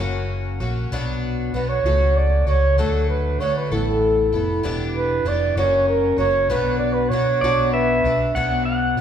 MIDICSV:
0, 0, Header, 1, 5, 480
1, 0, Start_track
1, 0, Key_signature, 2, "minor"
1, 0, Tempo, 619835
1, 709, Time_signature, 6, 3, 24, 8
1, 6976, End_track
2, 0, Start_track
2, 0, Title_t, "Pedal steel guitar"
2, 0, Program_c, 0, 26
2, 5741, Note_on_c, 0, 74, 83
2, 5990, Note_on_c, 0, 76, 84
2, 5992, Note_off_c, 0, 74, 0
2, 6463, Note_off_c, 0, 76, 0
2, 6467, Note_on_c, 0, 78, 78
2, 6692, Note_off_c, 0, 78, 0
2, 6702, Note_on_c, 0, 78, 76
2, 6976, Note_off_c, 0, 78, 0
2, 6976, End_track
3, 0, Start_track
3, 0, Title_t, "Flugelhorn"
3, 0, Program_c, 1, 56
3, 1187, Note_on_c, 1, 71, 82
3, 1308, Note_on_c, 1, 73, 92
3, 1319, Note_off_c, 1, 71, 0
3, 1683, Note_on_c, 1, 74, 96
3, 1694, Note_off_c, 1, 73, 0
3, 1917, Note_off_c, 1, 74, 0
3, 1920, Note_on_c, 1, 73, 99
3, 2139, Note_off_c, 1, 73, 0
3, 2157, Note_on_c, 1, 69, 87
3, 2378, Note_off_c, 1, 69, 0
3, 2400, Note_on_c, 1, 71, 84
3, 2631, Note_on_c, 1, 73, 97
3, 2643, Note_off_c, 1, 71, 0
3, 2766, Note_on_c, 1, 71, 78
3, 2778, Note_off_c, 1, 73, 0
3, 2887, Note_on_c, 1, 69, 70
3, 2899, Note_off_c, 1, 71, 0
3, 3599, Note_off_c, 1, 69, 0
3, 3846, Note_on_c, 1, 71, 99
3, 4088, Note_on_c, 1, 74, 103
3, 4100, Note_off_c, 1, 71, 0
3, 4314, Note_off_c, 1, 74, 0
3, 4319, Note_on_c, 1, 73, 98
3, 4538, Note_off_c, 1, 73, 0
3, 4558, Note_on_c, 1, 70, 89
3, 4778, Note_off_c, 1, 70, 0
3, 4796, Note_on_c, 1, 73, 105
3, 5031, Note_on_c, 1, 71, 91
3, 5042, Note_off_c, 1, 73, 0
3, 5253, Note_off_c, 1, 71, 0
3, 5257, Note_on_c, 1, 74, 96
3, 5371, Note_on_c, 1, 71, 89
3, 5383, Note_off_c, 1, 74, 0
3, 5492, Note_on_c, 1, 73, 105
3, 5503, Note_off_c, 1, 71, 0
3, 5980, Note_off_c, 1, 73, 0
3, 5983, Note_on_c, 1, 71, 90
3, 6434, Note_off_c, 1, 71, 0
3, 6976, End_track
4, 0, Start_track
4, 0, Title_t, "Twelve-string acoustic guitar"
4, 0, Program_c, 2, 25
4, 0, Note_on_c, 2, 49, 60
4, 0, Note_on_c, 2, 54, 72
4, 0, Note_on_c, 2, 58, 67
4, 0, Note_on_c, 2, 61, 65
4, 0, Note_on_c, 2, 66, 68
4, 1, Note_on_c, 2, 42, 60
4, 461, Note_off_c, 2, 61, 0
4, 463, Note_off_c, 2, 66, 0
4, 466, Note_on_c, 2, 66, 59
4, 470, Note_on_c, 2, 61, 54
4, 472, Note_off_c, 2, 58, 0
4, 474, Note_off_c, 2, 49, 0
4, 475, Note_off_c, 2, 42, 0
4, 480, Note_off_c, 2, 54, 0
4, 480, Note_on_c, 2, 58, 57
4, 483, Note_on_c, 2, 54, 43
4, 708, Note_off_c, 2, 54, 0
4, 708, Note_off_c, 2, 66, 0
4, 710, Note_off_c, 2, 61, 0
4, 712, Note_on_c, 2, 47, 83
4, 715, Note_off_c, 2, 58, 0
4, 718, Note_on_c, 2, 54, 87
4, 719, Note_on_c, 2, 59, 76
4, 722, Note_on_c, 2, 62, 77
4, 725, Note_on_c, 2, 66, 82
4, 1183, Note_off_c, 2, 54, 0
4, 1191, Note_off_c, 2, 47, 0
4, 1192, Note_on_c, 2, 54, 63
4, 1193, Note_off_c, 2, 59, 0
4, 1196, Note_off_c, 2, 62, 0
4, 1198, Note_off_c, 2, 66, 0
4, 1202, Note_on_c, 2, 59, 57
4, 1208, Note_on_c, 2, 62, 55
4, 1209, Note_on_c, 2, 66, 62
4, 1429, Note_off_c, 2, 66, 0
4, 1431, Note_off_c, 2, 54, 0
4, 1436, Note_off_c, 2, 59, 0
4, 1438, Note_on_c, 2, 66, 63
4, 1439, Note_off_c, 2, 62, 0
4, 1440, Note_on_c, 2, 57, 61
4, 1445, Note_on_c, 2, 54, 53
4, 1447, Note_on_c, 2, 49, 52
4, 1902, Note_off_c, 2, 66, 0
4, 1912, Note_on_c, 2, 66, 50
4, 1916, Note_off_c, 2, 57, 0
4, 1918, Note_off_c, 2, 54, 0
4, 1919, Note_off_c, 2, 49, 0
4, 1920, Note_on_c, 2, 61, 55
4, 1924, Note_on_c, 2, 57, 43
4, 2150, Note_off_c, 2, 57, 0
4, 2151, Note_off_c, 2, 66, 0
4, 2153, Note_on_c, 2, 50, 61
4, 2153, Note_on_c, 2, 54, 67
4, 2155, Note_off_c, 2, 61, 0
4, 2159, Note_on_c, 2, 57, 77
4, 2161, Note_on_c, 2, 62, 72
4, 2165, Note_on_c, 2, 66, 82
4, 2626, Note_off_c, 2, 54, 0
4, 2632, Note_off_c, 2, 50, 0
4, 2632, Note_off_c, 2, 57, 0
4, 2636, Note_off_c, 2, 62, 0
4, 2636, Note_on_c, 2, 54, 60
4, 2638, Note_off_c, 2, 66, 0
4, 2641, Note_on_c, 2, 57, 62
4, 2646, Note_on_c, 2, 62, 60
4, 2650, Note_on_c, 2, 66, 72
4, 2873, Note_off_c, 2, 54, 0
4, 2874, Note_off_c, 2, 66, 0
4, 2876, Note_off_c, 2, 57, 0
4, 2877, Note_on_c, 2, 69, 59
4, 2878, Note_off_c, 2, 62, 0
4, 2881, Note_on_c, 2, 64, 61
4, 2887, Note_on_c, 2, 59, 52
4, 2891, Note_on_c, 2, 57, 59
4, 3341, Note_off_c, 2, 69, 0
4, 3350, Note_off_c, 2, 64, 0
4, 3350, Note_on_c, 2, 69, 48
4, 3359, Note_off_c, 2, 59, 0
4, 3359, Note_on_c, 2, 64, 49
4, 3361, Note_off_c, 2, 57, 0
4, 3370, Note_on_c, 2, 59, 43
4, 3586, Note_off_c, 2, 59, 0
4, 3589, Note_on_c, 2, 52, 90
4, 3591, Note_off_c, 2, 69, 0
4, 3595, Note_off_c, 2, 64, 0
4, 3595, Note_on_c, 2, 59, 77
4, 3602, Note_on_c, 2, 62, 85
4, 3604, Note_on_c, 2, 67, 81
4, 4060, Note_off_c, 2, 52, 0
4, 4064, Note_off_c, 2, 59, 0
4, 4066, Note_off_c, 2, 62, 0
4, 4069, Note_on_c, 2, 52, 66
4, 4073, Note_on_c, 2, 59, 70
4, 4075, Note_on_c, 2, 62, 60
4, 4077, Note_off_c, 2, 67, 0
4, 4086, Note_on_c, 2, 67, 66
4, 4310, Note_off_c, 2, 52, 0
4, 4312, Note_off_c, 2, 59, 0
4, 4312, Note_off_c, 2, 67, 0
4, 4313, Note_off_c, 2, 62, 0
4, 4316, Note_on_c, 2, 66, 61
4, 4317, Note_on_c, 2, 58, 71
4, 4317, Note_on_c, 2, 61, 72
4, 4322, Note_on_c, 2, 49, 61
4, 4325, Note_on_c, 2, 54, 60
4, 4330, Note_on_c, 2, 42, 55
4, 4782, Note_off_c, 2, 66, 0
4, 4785, Note_off_c, 2, 61, 0
4, 4785, Note_on_c, 2, 66, 53
4, 4794, Note_off_c, 2, 58, 0
4, 4794, Note_on_c, 2, 61, 45
4, 4796, Note_off_c, 2, 49, 0
4, 4800, Note_off_c, 2, 42, 0
4, 4800, Note_off_c, 2, 54, 0
4, 4802, Note_on_c, 2, 58, 49
4, 4803, Note_on_c, 2, 54, 48
4, 5025, Note_off_c, 2, 54, 0
4, 5027, Note_off_c, 2, 66, 0
4, 5031, Note_on_c, 2, 47, 80
4, 5032, Note_off_c, 2, 61, 0
4, 5034, Note_on_c, 2, 54, 71
4, 5035, Note_off_c, 2, 58, 0
4, 5038, Note_on_c, 2, 59, 79
4, 5039, Note_on_c, 2, 62, 90
4, 5046, Note_on_c, 2, 66, 87
4, 5500, Note_off_c, 2, 54, 0
4, 5505, Note_off_c, 2, 59, 0
4, 5509, Note_on_c, 2, 54, 59
4, 5510, Note_off_c, 2, 47, 0
4, 5514, Note_off_c, 2, 62, 0
4, 5514, Note_off_c, 2, 66, 0
4, 5514, Note_on_c, 2, 59, 61
4, 5522, Note_on_c, 2, 62, 66
4, 5524, Note_on_c, 2, 66, 77
4, 5749, Note_off_c, 2, 54, 0
4, 5752, Note_off_c, 2, 59, 0
4, 5752, Note_off_c, 2, 62, 0
4, 5752, Note_off_c, 2, 66, 0
4, 5761, Note_on_c, 2, 62, 69
4, 5762, Note_on_c, 2, 66, 75
4, 5767, Note_on_c, 2, 59, 58
4, 5770, Note_on_c, 2, 54, 59
4, 5771, Note_on_c, 2, 47, 57
4, 6225, Note_off_c, 2, 66, 0
4, 6230, Note_off_c, 2, 62, 0
4, 6234, Note_on_c, 2, 66, 50
4, 6237, Note_off_c, 2, 59, 0
4, 6239, Note_off_c, 2, 47, 0
4, 6239, Note_off_c, 2, 54, 0
4, 6239, Note_on_c, 2, 62, 54
4, 6250, Note_on_c, 2, 59, 46
4, 6466, Note_off_c, 2, 59, 0
4, 6468, Note_off_c, 2, 62, 0
4, 6471, Note_off_c, 2, 66, 0
4, 6472, Note_on_c, 2, 47, 60
4, 6472, Note_on_c, 2, 54, 65
4, 6475, Note_on_c, 2, 59, 81
4, 6477, Note_on_c, 2, 62, 70
4, 6483, Note_on_c, 2, 66, 79
4, 6939, Note_off_c, 2, 54, 0
4, 6945, Note_off_c, 2, 59, 0
4, 6948, Note_on_c, 2, 54, 58
4, 6949, Note_off_c, 2, 47, 0
4, 6952, Note_off_c, 2, 62, 0
4, 6955, Note_off_c, 2, 66, 0
4, 6976, Note_off_c, 2, 54, 0
4, 6976, End_track
5, 0, Start_track
5, 0, Title_t, "Fingered electric bass"
5, 0, Program_c, 3, 33
5, 0, Note_on_c, 3, 30, 87
5, 441, Note_off_c, 3, 30, 0
5, 466, Note_on_c, 3, 34, 76
5, 696, Note_off_c, 3, 34, 0
5, 703, Note_on_c, 3, 35, 76
5, 1163, Note_off_c, 3, 35, 0
5, 1190, Note_on_c, 3, 35, 76
5, 1418, Note_off_c, 3, 35, 0
5, 1425, Note_on_c, 3, 37, 82
5, 1884, Note_off_c, 3, 37, 0
5, 1908, Note_on_c, 3, 37, 83
5, 2137, Note_off_c, 3, 37, 0
5, 2143, Note_on_c, 3, 38, 79
5, 2603, Note_off_c, 3, 38, 0
5, 2623, Note_on_c, 3, 50, 72
5, 2855, Note_off_c, 3, 50, 0
5, 2867, Note_on_c, 3, 33, 89
5, 3325, Note_off_c, 3, 33, 0
5, 3346, Note_on_c, 3, 29, 89
5, 3576, Note_off_c, 3, 29, 0
5, 3588, Note_on_c, 3, 28, 95
5, 4045, Note_off_c, 3, 28, 0
5, 4063, Note_on_c, 3, 29, 81
5, 4295, Note_off_c, 3, 29, 0
5, 4301, Note_on_c, 3, 30, 90
5, 4761, Note_off_c, 3, 30, 0
5, 4775, Note_on_c, 3, 30, 92
5, 5010, Note_off_c, 3, 30, 0
5, 5021, Note_on_c, 3, 35, 81
5, 5481, Note_off_c, 3, 35, 0
5, 5499, Note_on_c, 3, 47, 81
5, 5732, Note_off_c, 3, 47, 0
5, 5744, Note_on_c, 3, 35, 83
5, 6202, Note_off_c, 3, 35, 0
5, 6226, Note_on_c, 3, 35, 100
5, 6455, Note_off_c, 3, 35, 0
5, 6471, Note_on_c, 3, 35, 86
5, 6925, Note_off_c, 3, 35, 0
5, 6943, Note_on_c, 3, 47, 66
5, 6976, Note_off_c, 3, 47, 0
5, 6976, End_track
0, 0, End_of_file